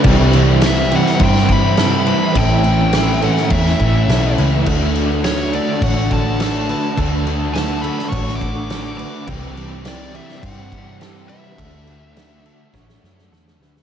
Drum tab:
CC |x-x-x-x-x-x-x-x-|x-x-x-x-x-x-x-x-|x-x-x-x-x-x-x-x-|x-x-x-x-x-x-x-x-|
SD |----o--o-o--o---|----o--o-o--o---|----o-------o---|----o--o-o--o---|
BD |o-------o-o-----|o-------o-o-----|o-------o-o-----|o-------o-o-----|

CC |x-x-x-x-x-x-x-x-|x-x-x-x---------|
SD |----o--o----o---|----o---oooooooo|
BD |o-------o-o-----|o-------o-------|